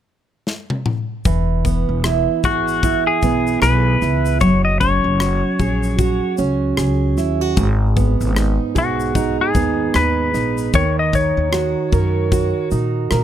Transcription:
0.47 snare
0.70 high tom
0.86 mid tom
1.25 upright bass E1, steel-string acoustic guitar E3, kick, shaker
1.65 steel-string acoustic guitar B3, kick, shaker
1.89 upright bass E1
2.04 steel-string acoustic guitar E4, cross-stick, shaker
2.44 upright bass G#1, electric slide guitar F#4, steel-string acoustic guitar G#4, kick, shaker
2.68 shaker
2.83 steel-string acoustic guitar E4, kick, shaker
3.07 electric slide guitar G#4
3.22 upright bass B1, steel-string acoustic guitar B3, kick, shaker
3.47 shaker
3.62 upright bass B1, steel-string acoustic guitar G#4, electric slide guitar B4, cross-stick, shaker
4.02 upright bass C#2, steel-string acoustic guitar E4, cross-stick, shaker
4.26 shaker
4.41 upright bass F#1, steel-string acoustic guitar F#3, electric slide guitar C#5, kick, shaker
4.65 electric slide guitar D#5
4.80 steel-string acoustic guitar C#4, electric slide guitar C#5, kick, shaker
5.04 upright bass F#1
5.20 steel-string acoustic guitar F#4, cross-stick, shaker
5.59 upright bass A#1, steel-string acoustic guitar G#4, kick, shaker
5.83 shaker
5.99 steel-string acoustic guitar F#4, kick, shaker
6.38 upright bass C#2, steel-string acoustic guitar C#4, shaker
6.77 upright bass C#2, steel-string acoustic guitar G#4, cross-stick, shaker
7.17 upright bass D#2, steel-string acoustic guitar E4, cross-stick, shaker
7.41 steel-string acoustic guitar F#4
7.57 upright bass G#1, steel-string acoustic guitar G#2, kick, shaker
7.96 steel-string acoustic guitar B3, kick, shaker
8.21 upright bass G#1, shaker
8.35 steel-string acoustic guitar D#4, cross-stick, shaker
8.75 upright bass B1, electric slide guitar F#4, steel-string acoustic guitar G#4, kick, shaker
9.00 shaker
9.15 steel-string acoustic guitar D#4, kick, shaker
9.41 electric slide guitar G#4
9.55 upright bass D#2, steel-string acoustic guitar B3, kick, shaker
9.94 upright bass D#2, steel-string acoustic guitar G#4, electric slide guitar B4, cross-stick, shaker
10.34 upright bass A#1, steel-string acoustic guitar D#4, cross-stick, shaker
10.58 shaker
10.74 upright bass D#2, steel-string acoustic guitar D#3, electric slide guitar C#5, kick, shaker
10.99 electric slide guitar D#5
11.13 steel-string acoustic guitar D#4, electric slide guitar C#5, kick, shaker
11.37 upright bass D#2
11.52 steel-string acoustic guitar F#4, cross-stick, shaker
11.92 upright bass F#2, steel-string acoustic guitar A#4, kick, shaker
12.32 steel-string acoustic guitar F#4, kick, shaker
12.71 upright bass A#2, steel-string acoustic guitar D#4, shaker
13.11 upright bass A#2, steel-string acoustic guitar A#4, cross-stick, shaker

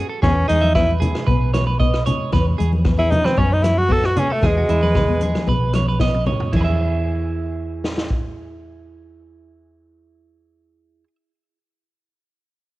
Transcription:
Already playing: nylon-string guitar C#4
0.09 clean electric guitar A4
0.22 fingered electric bass E2, nylon-string guitar B3, tenor saxophone C#4, clean electric guitar G#4, kick, cross-stick, low conga
0.35 muted clean electric guitar stroke
0.48 fingered electric bass E2, nylon-string guitar G#3, tenor saxophone D#4, clean electric guitar G#4, closed hi-hat
0.61 clean electric guitar E5, high conga
0.75 nylon-string guitar B3, tenor saxophone E4, clean electric guitar B4, kick, cross-stick
0.90 muted nylon-string guitar stroke
1.00 nylon-string guitar C#4, clean electric guitar G#4, closed hi-hat, high conga, low conga
1.15 cross-stick
1.27 fingered electric bass B1, nylon-string guitar B3, clean electric guitar B4, kick
1.54 nylon-string guitar A3, clean electric guitar C#5, cross-stick, closed hi-hat, high conga
1.67 clean electric guitar B4
1.80 nylon-string guitar B3, clean electric guitar D#5, kick
1.94 cross-stick
2.06 nylon-string guitar C#4, clean electric guitar C#5, closed hi-hat, low conga
2.32 fingered electric bass E2, nylon-string guitar B3, clean electric guitar B4, kick, cross-stick, low conga
2.58 fingered electric bass E2, nylon-string guitar G#3, clean electric guitar G#4, closed hi-hat
2.73 high conga
2.85 nylon-string guitar B3, kick, cross-stick
2.98 nylon-string guitar B3, tenor saxophone E4, clean electric guitar G#4
3.11 nylon-string guitar C#4, tenor saxophone D#4, closed hi-hat, high conga, low conga
3.24 tenor saxophone C4, clean electric guitar B4, cross-stick, high conga
3.37 fingered electric bass F#2, nylon-string guitar B3, tenor saxophone C#4, clean electric guitar C#5, kick
3.53 tenor saxophone D#4
3.62 nylon-string guitar A3, tenor saxophone E4, muted clean electric guitar stroke, cross-stick, closed hi-hat, high conga
3.78 tenor saxophone F#4
3.88 nylon-string guitar B3, clean electric guitar F#4, tenor saxophone A4, kick
4.03 tenor saxophone F#4, cross-stick
4.16 nylon-string guitar C#4, tenor saxophone C#4, clean electric guitar G#4, closed hi-hat, low conga
4.30 tenor saxophone A3, clean electric guitar A4
4.42 fingered electric bass E2, tenor saxophone G#3, nylon-string guitar B3, clean electric guitar G#4, kick, cross-stick, low conga
4.58 clean electric guitar F#4
4.69 fingered electric bass E2, nylon-string guitar G#3, clean electric guitar E4, closed hi-hat
4.83 clean electric guitar B4, high conga
4.94 nylon-string guitar B3, clean electric guitar B4, kick, cross-stick, low conga
5.08 nylon-string guitar B3
5.20 nylon-string guitar C#4, clean electric guitar G#4, closed hi-hat, high conga
5.35 cross-stick, high conga
5.47 fingered electric bass B1, nylon-string guitar B3, clean electric guitar B4, kick
5.74 nylon-string guitar A3, clean electric guitar C#5, cross-stick, closed hi-hat, high conga
5.88 clean electric guitar B4
5.99 nylon-string guitar B3, clean electric guitar D#5, kick, snare
6.14 high tom
6.26 nylon-string guitar C#4, clean electric guitar C#5, mid tom, low conga
6.40 floor tom
6.53 fingered electric bass E2, nylon-string guitar E3, clean electric guitar E4 G#4, kick, crash, high conga
6.61 clean electric guitar B4 E5
7.84 snare
7.98 snare
8.10 kick

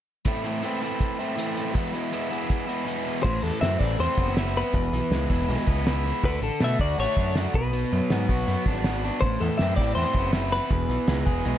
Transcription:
0.25 overdriven electric guitar A2 E3 A3 C4 E4, kick, closed hi-hat
0.45 overdriven electric guitar A3 C4 E4, closed hi-hat
0.63 overdriven electric guitar E3 A3 C4 E4, closed hi-hat
0.82 overdriven electric guitar A3 C4 E4, closed hi-hat
1.01 kick, closed hi-hat
1.19 overdriven electric guitar A3 C4 E4, closed hi-hat
1.36 overdriven electric guitar A2 E3 A3 C4 E4, closed hi-hat
1.57 closed hi-hat
1.73 overdriven electric guitar E2 B2 E3 G#3 B3 E4, kick, closed hi-hat
1.93 overdriven electric guitar E3 G#3 B3 E4, closed hi-hat
2.12 overdriven electric guitar E3 G#3 B3 E4, closed hi-hat
2.30 overdriven electric guitar E3 G#3 B3 E4, closed hi-hat
2.50 kick, closed hi-hat
2.67 overdriven electric guitar E3 G#3 B3 E4, closed hi-hat
2.85 overdriven electric guitar E2 B2 E3 G#3 B3 E4, closed hi-hat
3.07 closed hi-hat
3.23 picked electric bass A1, overdriven electric guitar A2, clean electric guitar C5, kick, crash
3.43 picked electric bass E2, overdriven electric guitar E3, clean electric guitar A4, open hi-hat
3.61 picked electric bass F#2, overdriven electric guitar C4, clean electric guitar E5, snare, open hi-hat
3.79 picked electric bass A1, overdriven electric guitar E4, clean electric guitar D5, kick, open hi-hat
3.99 picked electric bass E2, overdriven electric guitar C4, clean electric guitar C5, open hi-hat
4.17 picked electric bass F#1, overdriven electric guitar B3, kick, open hi-hat
4.28 snare
4.37 overdriven electric guitar E4, snare, open hi-hat
4.56 overdriven electric guitar B3, clean electric guitar B4, open hi-hat
4.73 picked electric bass E1, overdriven electric guitar E2, kick, open hi-hat
4.93 picked electric bass B1, overdriven electric guitar E3, open hi-hat
5.11 picked electric bass C#2, overdriven electric guitar G#3, snare, open hi-hat
5.30 picked electric bass E1, overdriven electric guitar E4, kick, open hi-hat
5.41 snare
5.48 picked electric bass B1, overdriven electric guitar G#3, open hi-hat
5.67 picked electric bass C#2, overdriven electric guitar B3, kick, open hi-hat
5.78 snare
5.86 overdriven electric guitar E4, snare, open hi-hat
6.05 overdriven electric guitar B3, open hi-hat
6.23 picked electric bass D2, overdriven electric guitar D3, clean electric guitar B4, kick, open hi-hat
6.41 picked electric bass A1, overdriven electric guitar D3, clean electric guitar A4, open hi-hat
6.60 picked electric bass B2, overdriven electric guitar A3, snare, open hi-hat
6.64 clean electric guitar E5
6.79 picked electric bass D2, overdriven electric guitar F#4, clean electric guitar D5, kick, open hi-hat
6.98 picked electric bass A1, overdriven electric guitar A3, clean electric guitar C#5, open hi-hat
7.17 picked electric bass F#2, overdriven electric guitar D4, kick, open hi-hat
7.35 overdriven electric guitar F#4, snare, open hi-hat
7.54 picked electric bass B1, overdriven electric guitar B2, clean electric guitar B4, kick, open hi-hat
7.73 overdriven electric guitar B2, open hi-hat
7.92 picked electric bass F#2, overdriven electric guitar F#3, open hi-hat
8.10 picked electric bass G#2, overdriven electric guitar B3, snare, open hi-hat
8.29 picked electric bass B1, overdriven electric guitar F#4, kick, open hi-hat
8.38 snare
8.47 picked electric bass F#2, overdriven electric guitar B3, open hi-hat
8.66 picked electric bass G#1, overdriven electric guitar D4, kick, open hi-hat
8.76 snare
8.84 overdriven electric guitar F#4, snare, open hi-hat
9.04 overdriven electric guitar D4, open hi-hat
9.21 picked electric bass A1, overdriven electric guitar A2, clean electric guitar C5, kick, open hi-hat
9.40 picked electric bass E2, overdriven electric guitar E3, clean electric guitar A4, open hi-hat
9.58 picked electric bass F#2, overdriven electric guitar C4, clean electric guitar E5, snare, open hi-hat
9.76 picked electric bass A1, overdriven electric guitar E4, clean electric guitar D5, kick, open hi-hat
9.95 picked electric bass E2, overdriven electric guitar C4, clean electric guitar C5, open hi-hat
10.14 picked electric bass F#1, overdriven electric guitar B3, kick, open hi-hat
10.33 overdriven electric guitar E4, snare, open hi-hat
10.52 overdriven electric guitar B3, clean electric guitar B4, open hi-hat
10.70 picked electric bass E1, overdriven electric guitar E2, kick, open hi-hat
10.89 picked electric bass B1, overdriven electric guitar E3, open hi-hat
11.08 picked electric bass C#2, overdriven electric guitar G#3, snare, open hi-hat
11.26 picked electric bass E1, overdriven electric guitar G#4, kick, open hi-hat
11.45 picked electric bass B1, overdriven electric guitar G#3, open hi-hat

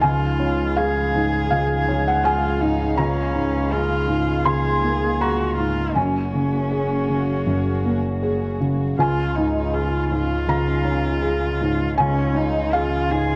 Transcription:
Already playing: felt piano G#2
0.01 double bass C#2, felt piano C#2 G#5, string section F3 G#4 F5, cello F4
0.39 felt piano C#4
0.76 felt piano G#4 F5, cello G#4
1.15 felt piano G#2
1.51 felt piano C#2 F5
1.88 felt piano C#4
2.08 felt piano F#5
2.23 cello F4, felt piano G#4 G#5
2.60 felt piano G#2, cello D#4
2.97 felt piano C#2 A#5, string section A#3, cello C#4
3.34 felt piano G#2
3.71 cello F4, felt piano G#4
4.08 felt piano G#2
4.45 felt piano C#2 C6, cello G#4
4.84 felt piano A#3
5.21 cello F#4, felt piano G#4 A#5
5.57 felt piano G#2, cello F4
5.95 double bass F#1, felt piano F#2 G#5, cello C#4, string section F#4 G#4
6.34 felt piano C#3
6.71 felt piano G#4
7.08 felt piano C#3
7.46 felt piano F#2
7.85 felt piano A#3
8.23 felt piano G#4
8.61 felt piano C#3
8.98 felt piano C#2 G#5, double bass C#2, string section C#4 F4 G#4, cello F4
9.36 felt piano G#2, cello D#4
9.74 cello F4, felt piano G#4
10.11 felt piano G#2, cello F4
10.48 felt piano C#2 A#5
10.85 felt piano C#4
11.22 felt piano G#4
11.61 felt piano G#2
11.97 double bass C#2, felt piano C#2 G#5, string section C#4 F4 G#4, cello C#4
12.35 felt piano C#4, cello D#4
12.73 cello F4, felt piano G#4 F5
13.10 felt piano G#2, cello G#4

